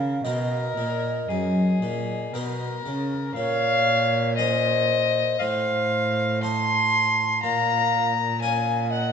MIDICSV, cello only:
0, 0, Header, 1, 2, 480
1, 0, Start_track
1, 0, Key_signature, -6, "minor"
1, 0, Tempo, 1043478
1, 1071, Tempo, 1022147
1, 1554, Time_signature, 4, 2, 24, 8
1, 1554, Key_signature, -5, "minor"
1, 2991, Tempo, 995025
1, 4296, End_track
2, 0, Start_track
2, 0, Title_t, "Cello"
2, 0, Program_c, 0, 42
2, 0, Note_on_c, 0, 49, 77
2, 107, Note_off_c, 0, 49, 0
2, 111, Note_on_c, 0, 47, 77
2, 347, Note_off_c, 0, 47, 0
2, 351, Note_on_c, 0, 46, 75
2, 586, Note_off_c, 0, 46, 0
2, 589, Note_on_c, 0, 42, 72
2, 825, Note_off_c, 0, 42, 0
2, 828, Note_on_c, 0, 46, 72
2, 1065, Note_off_c, 0, 46, 0
2, 1073, Note_on_c, 0, 47, 69
2, 1311, Note_off_c, 0, 47, 0
2, 1316, Note_on_c, 0, 49, 69
2, 1550, Note_off_c, 0, 49, 0
2, 1555, Note_on_c, 0, 46, 97
2, 2508, Note_on_c, 0, 45, 79
2, 2515, Note_off_c, 0, 46, 0
2, 3478, Note_on_c, 0, 46, 86
2, 3485, Note_off_c, 0, 45, 0
2, 4296, Note_off_c, 0, 46, 0
2, 4296, End_track
0, 0, End_of_file